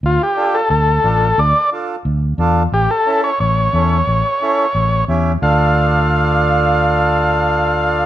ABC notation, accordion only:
X:1
M:4/4
L:1/8
Q:1/4=178
K:Dm
V:1 name="Accordion"
z2 [DFA] z3 [DFA] z | z2 [DFA] z3 [DFA] z | z2 [^CEA] z3 [CEA] z | z2 [^CEA] z3 [CEG] z |
[DFA]8- | [DFA]8 |]